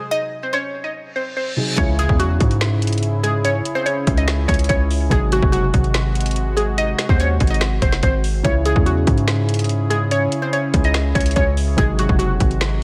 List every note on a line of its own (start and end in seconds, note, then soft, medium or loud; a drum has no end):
0.00 1.52 C3 medium
0.00 1.53 F#3 medium
0.00 1.53 D#4 medium
0.00 1.54 G#4 medium
0.00 0.10 C5 medium
0.11 0.41 D#5 medium
0.11 0.50 D#5 loud
0.43 0.52 C5 medium
0.53 0.92 C5 medium
0.53 0.83 C#5 medium
0.84 0.94 D#5 medium
0.95 reverse cymbal medium
1.16 1.35 C5 medium
1.37 1.55 C5 medium
1.56 1.78 C3 soft
1.56 1.78 F#3 soft
1.56 1.78 D#4 soft
1.56 1.78 G#4 medium
1.76 2.08 C#2 loud
1.76 5.06 C#3 medium
1.76 5.08 C#3 medium
1.76 5.07 E3 medium
1.76 5.07 G#3 medium
1.76 5.08 C#4 medium
1.76 5.08 E4 medium
1.76 5.08 G#4 medium
1.76 1.97 C#5 medium
1.76 kick loud
1.76 closed hi-hat medium
1.76 impact medium
1.99 2.18 G#4 loud
1.99 closed hi-hat medium
2.09 2.39 E2 loud
2.09 kick medium
2.19 3.20 F#4 medium
2.19 closed hi-hat medium
2.40 3.61 G#2 loud
2.40 kick medium
2.40 closed hi-hat medium
2.51 closed hi-hat soft
2.61 finger snap medium
2.61 snare loud
2.61 closed hi-hat medium
2.82 closed hi-hat medium
2.87 closed hi-hat medium
2.93 closed hi-hat medium
2.98 closed hi-hat medium
3.03 closed hi-hat medium
3.23 3.42 G#4 medium
3.23 closed hi-hat medium
3.45 3.74 C#5 medium
3.45 closed hi-hat medium
3.65 closed hi-hat medium
3.75 3.85 C5 medium
3.86 4.15 C#5 medium
3.86 closed hi-hat medium
4.07 4.47 C#2 loud
4.07 kick medium
4.07 closed hi-hat medium
4.17 4.27 D#5 medium
4.17 closed hi-hat soft
4.28 finger snap medium
4.28 snare loud
4.28 closed hi-hat medium
4.48 4.69 C#2 loud
4.48 4.67 C#5 medium
4.48 kick loud
4.48 closed hi-hat medium
4.54 closed hi-hat medium
4.59 closed hi-hat medium
4.64 closed hi-hat medium
4.69 5.10 C#2 loud
4.69 4.88 C#5 medium
4.69 kick medium
4.69 closed hi-hat medium
4.91 open hi-hat medium
5.10 5.41 G#1 loud
5.10 8.40 C3 medium
5.10 8.41 C3 medium
5.10 8.40 F#3 medium
5.10 8.41 G#3 medium
5.10 8.41 D#4 medium
5.10 8.41 F#4 medium
5.10 5.30 G#4 medium
5.10 8.41 G#4 medium
5.10 kick loud
5.10 closed hi-hat medium
5.32 5.51 F#4 medium
5.32 closed hi-hat medium
5.42 5.72 F#1 loud
5.42 kick loud
5.52 6.53 F#4 medium
5.52 closed hi-hat medium
5.74 6.95 G#1 loud
5.74 kick medium
5.74 closed hi-hat medium
5.84 closed hi-hat soft
5.94 finger snap medium
5.94 snare loud
5.94 closed hi-hat medium
6.15 closed hi-hat medium
6.21 closed hi-hat medium
6.26 closed hi-hat medium
6.31 closed hi-hat medium
6.36 closed hi-hat medium
6.57 6.76 G#4 medium
6.57 closed hi-hat medium
6.78 7.07 D#5 medium
6.78 closed hi-hat medium
6.98 finger snap medium
6.98 snare medium
6.98 closed hi-hat medium
7.09 7.39 D#2 loud
7.09 7.19 C5 medium
7.09 kick medium
7.20 7.49 C#5 medium
7.20 closed hi-hat medium
7.40 7.80 G#1 loud
7.40 kick medium
7.40 closed hi-hat medium
7.47 7.60 D#5 medium
7.47 closed hi-hat medium
7.54 closed hi-hat medium
7.61 finger snap medium
7.61 snare loud
7.61 closed hi-hat medium
7.82 8.02 F#1 loud
7.82 8.01 C5 medium
7.82 kick loud
7.82 closed hi-hat medium
7.92 snare medium
7.92 closed hi-hat medium
8.03 8.43 G#1 loud
8.03 8.22 C5 medium
8.03 kick loud
8.03 closed hi-hat medium
8.24 open hi-hat medium
8.43 8.75 C#2 loud
8.43 11.73 C#3 medium
8.43 11.75 C#3 medium
8.43 11.74 E3 medium
8.43 11.74 G#3 medium
8.43 11.75 C#4 medium
8.43 11.75 E4 medium
8.43 11.74 E4 medium
8.43 11.75 G#4 medium
8.43 8.63 C#5 medium
8.43 kick loud
8.43 closed hi-hat medium
8.65 8.84 G#4 loud
8.65 closed hi-hat medium
8.76 9.06 E2 loud
8.76 kick loud
8.86 9.86 F#4 medium
8.86 closed hi-hat medium
9.07 10.28 G#2 loud
9.07 kick loud
9.07 closed hi-hat medium
9.18 closed hi-hat soft
9.28 finger snap medium
9.28 snare loud
9.28 closed hi-hat medium
9.49 closed hi-hat medium
9.54 closed hi-hat medium
9.59 closed hi-hat medium
9.64 closed hi-hat medium
9.69 closed hi-hat medium
9.90 10.09 G#4 medium
9.90 closed hi-hat medium
10.11 10.41 C#5 medium
10.11 closed hi-hat medium
10.32 closed hi-hat medium
10.42 10.52 C5 medium
10.53 10.82 C#5 medium
10.53 closed hi-hat medium
10.74 11.14 C#2 loud
10.74 kick medium
10.74 closed hi-hat medium
10.84 10.94 D#5 medium
10.84 closed hi-hat soft
10.94 finger snap medium
10.94 snare loud
10.94 closed hi-hat medium
11.15 11.35 C#2 loud
11.15 11.34 C#5 medium
11.15 kick loud
11.15 closed hi-hat medium
11.21 closed hi-hat medium
11.26 closed hi-hat medium
11.31 closed hi-hat medium
11.36 11.76 C#2 loud
11.36 11.55 C#5 medium
11.36 kick medium
11.36 closed hi-hat medium
11.57 open hi-hat medium
11.77 12.08 G#1 loud
11.77 12.83 C3 medium
11.77 12.83 F#3 medium
11.77 12.83 G#3 medium
11.77 12.83 D#4 medium
11.77 12.83 F#4 medium
11.77 11.97 G#4 loud
11.77 12.83 G#4 medium
11.77 kick loud
11.77 closed hi-hat medium
11.99 12.18 F#4 medium
11.99 closed hi-hat medium
12.09 12.39 F#1 loud
12.09 kick medium
12.19 12.83 F#4 medium
12.19 closed hi-hat medium
12.40 12.83 G#1 loud
12.40 kick medium
12.40 closed hi-hat medium
12.51 closed hi-hat soft
12.61 finger snap medium
12.61 snare loud
12.61 closed hi-hat medium